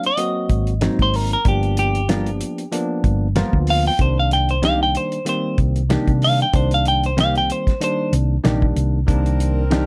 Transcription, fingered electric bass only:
0.49 G#1
0.99 G#1
1.45 G1
3.04 G1
3.53 D2
3.99 C2
5.58 C2
6.07 C3
6.53 C2
8.13 C2
8.45 A#1
8.76 C2
9.08 C2

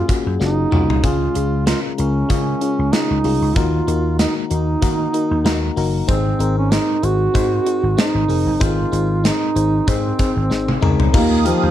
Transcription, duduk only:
Already playing: F4
0.41 D#4
1.04 F4
1.67 F4
1.98 C#4
2.93 D#4
3.56 F4
4.20 D#4
4.51 D#4
6.09 C4
6.58 C#4
6.73 D#4
7.05 F#4
8.00 D#4
8.62 F4
9.26 D#4
9.89 C4
11.15 A#3
11.46 F3

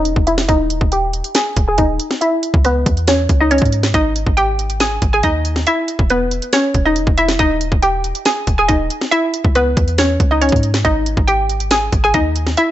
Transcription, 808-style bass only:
Already playing: E1
0.16 E1
0.49 D#1
0.81 D#1
1.57 D#1
1.78 D#1
2.54 C#2
2.86 E2
3.29 C#2
3.62 G#2
3.94 G#1
4.27 G#1
5.02 G#1
5.24 D#2
5.99 E1
6.75 E1
7.07 E1
7.39 D#1
7.72 D#1
8.47 D#1
8.69 D#1
9.45 C#2
9.77 E2
10.20 C#2
10.52 G#2
10.85 G#1
11.17 G#1
11.93 G#1
12.14 D#2

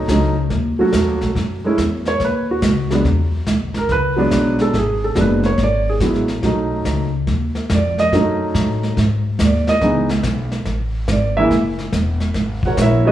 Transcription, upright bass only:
0.08 C#2
0.50 D#2
0.93 E2
1.07 D#2
1.21 B1
1.35 F#2
1.78 E2
2.20 D#2
2.62 C#2
3.04 E2
3.47 D2
3.61 B1
3.75 G#1
3.89 C#2
4.32 B1
4.73 G#1
5.15 F#1
5.58 G#1
6.00 A1
6.43 B1
6.85 C#2
7.28 D#2
7.70 F2
8.12 F#2
8.54 A2
8.97 G#2
9.40 D#2
9.81 C#2
10.23 B1
10.65 A1
11.08 G#1
11.50 F#1
11.92 E1
12.35 G#1
12.77 A#1

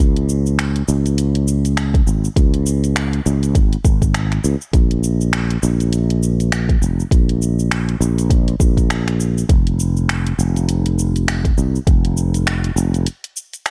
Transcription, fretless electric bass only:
0.00 C#2
0.88 C#2
2.07 G#1
2.36 C#2
3.26 C#2
3.55 G#1
3.85 G#1
4.44 C#2
4.73 A#1
5.63 A#1
6.82 F1
7.11 A#1
8.01 A#1
8.60 A#1
9.49 F1
10.39 F1
11.58 C2
11.87 F1
12.76 F1

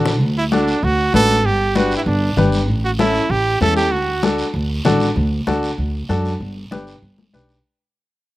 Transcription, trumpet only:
0.38 E4
0.53 D4
0.84 F#4
1.15 A4
1.46 G4
1.76 F#4
1.97 E4
2.07 D4
2.85 F#4
3.00 E4
3.31 G4
3.61 A4
3.77 G4
3.92 F#4

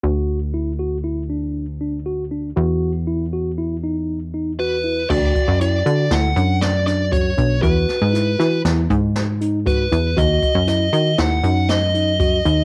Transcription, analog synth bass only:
0.03 D2
2.57 E2
5.10 D2
5.48 F#2
5.86 D3
6.11 D2
6.36 F#2
7.38 B1
7.63 E2
8.02 G#2
8.40 E3
8.65 E2
8.90 G#2
9.92 E2
10.17 D#2
10.55 F#2
10.93 D#3
11.19 D#2
11.43 F#2
12.45 D#2

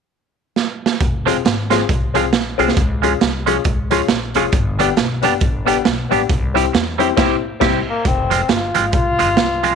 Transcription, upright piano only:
1.26 C4 F4 G#4
1.71 C4 F4 G#4
2.14 C4 F4 G#4
2.58 C4 F4 G#4
3.03 C#4 F4 G#4
3.46 C#4 F4 G#4
3.90 C#4 F4 G#4
4.35 C#4 F4 G#4
4.79 B3 D4 G4
5.22 B3 D4 G4
5.65 B3 D4 G4
6.10 B3 D4 G4
6.54 C4 E4 G4
6.99 C4 E4 G4
7.17 C4 E4 G4
7.60 C4 E4 G4

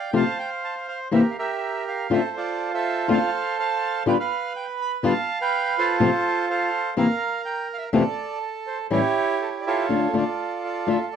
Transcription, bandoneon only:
Already playing: D5 F5 G5
0.15 C5 F5 A5
0.39 G5
0.64 A5
0.88 F5
1.13 G4 A#4 E5
1.31 F5
1.38 G4 A#4 E5
1.88 F5
2.12 A4 C5 E5
2.37 F4 A4 D5
2.74 A4 C5 E5
3.10 A4 C5 F5
3.59 C5 F5 A5
4.08 B4 G5
4.19 B4 F5
4.56 G5
4.81 B5
5.05 F5 A5
5.42 B4 G5
5.78 F4 A4 C5
6.50 A4 C5 F5
6.98 A#4 F5
7.45 G5
7.74 F5
7.78 E5
7.94 A4 D5
8.67 C5
8.92 E4 G4 C#5
9.42 A4
9.59 D5
9.67 F4 A4 C#5
10.16 F4 A4 D5
10.65 D5
10.89 A4 E5
11.13 D5

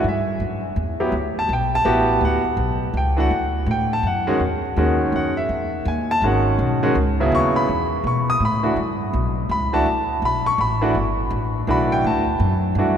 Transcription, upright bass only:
0.04 G2
0.40 F#2
0.76 E2
1.12 D2
1.49 B1
1.85 A1
2.21 D2
2.44 muted upright bass stroke
2.57 B1
2.94 C#2
3.31 D2
3.66 A2
4.03 F#2
4.40 E2
4.76 D#2
5.12 F#2
5.49 E2
5.85 D#2
6.22 G#1
6.59 B1
6.95 C#2
7.32 D#2
7.69 E2
8.04 B2
8.40 A2
8.76 G2
9.13 B1
9.49 C#2
9.86 D2
10.22 B1
10.58 A1
10.95 G1
11.30 A1
11.67 B1
12.04 D2
12.40 F#2
12.75 G2

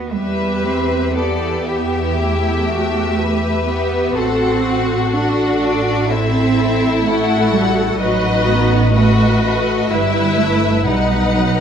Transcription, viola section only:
0.12 G4 B4
1.16 G4
2.18 E4 G4
2.68 F#4
3.19 G4
3.67 G4
4.16 F#4 A4
4.65 A4
5.14 F#4
6.11 A4
7.06 F#4 A4
8.00 F#4 B4
8.95 F#4 B4
9.90 E4 B4
10.87 D#4 B4

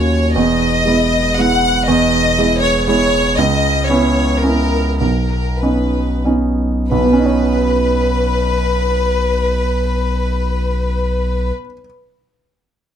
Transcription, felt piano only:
Already playing: D#2 A#3 C#4 F#4
0.36 E2
0.85 G#3 B3 E4
1.38 G#3 B3 E4
1.88 E2
2.38 G#3 B3 E4
2.88 G#3 B3 E4
3.38 C#2
3.90 B3 C#4 E4
4.44 B3 C#4 E4
5.01 B1
5.63 B3 C#4 D#4
6.24 B3 C#4 D#4
6.92 B1
6.98 B2
7.05 B3
7.13 C#4
7.19 D#4
7.26 C#5

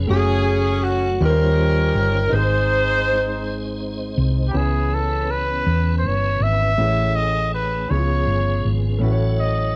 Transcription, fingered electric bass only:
0.10 F#1
1.21 D#2
1.95 G1
2.32 G#1
4.18 C2
4.54 C#2
5.67 E2
6.04 G1
6.40 G#1
6.78 A1
7.91 C#2
8.27 G1
8.65 G#1
9.01 A1

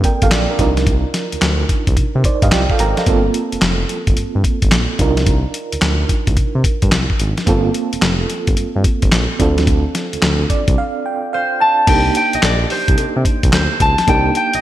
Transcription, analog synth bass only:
0.22 G1
0.32 A#1
0.59 C2
1.33 D2
1.42 D2
1.87 C2
1.97 C3
2.15 C3
2.42 G2
2.52 C2
2.80 G#1
3.07 G1
3.53 F1
3.62 F1
4.08 G1
4.17 G2
4.35 G2
4.63 G1
4.72 A#1
4.99 C2
5.73 D2
5.82 D2
6.28 C2
6.37 C3
6.55 C3
6.83 G2
6.92 C2
7.20 G#1
7.47 G1
7.93 F1
8.02 F1
8.48 G1
8.57 G2
8.76 G2
9.03 G1
9.12 A#1
9.40 D2
10.13 D2
10.23 D2
10.68 C2
11.88 C2
12.34 A#1
12.43 A#1
12.88 C2
12.98 C3
13.16 C3
13.44 C2
13.53 D2
13.81 C#2
14.08 C2
14.54 A#1

